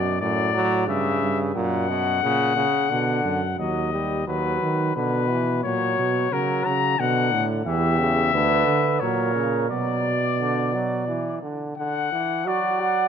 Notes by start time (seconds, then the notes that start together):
Already playing: F#2 B2 D5
0.21 F#2 A2 D5
0.54 F#3
0.88 G2 C#3 E5
1.22 G2
1.55 F#2 A#2 F#5
1.89 B2
2.23 A#2 C#3
2.56 C#3
2.90 B2 D3
3.24 F#2
3.58 D#2 F#3 D#5
3.92 G3
4.27 D#2 F#3 B4
4.62 D#3
4.96 B2 D3 B4
5.30 E3
5.64 A#2 F#3 C#5
5.99 B2
6.32 C#3 F#3 A#4
6.65 C#3 A#5
6.99 B2 D3 F#5
7.33 A2
7.65 E2 E3 G4 E5
7.99 C#3
8.33 D2 D3 B4
8.67 D3
9.00 A#2 F#3 A#4 C#5
9.35 C#3
9.69 B2 F#3 D5
10.39 D3
10.74 F#3
11.08 E3
11.42 D3
11.77 D3 F#5
12.12 E3
12.45 F#3 F#4 D5
12.80 F#5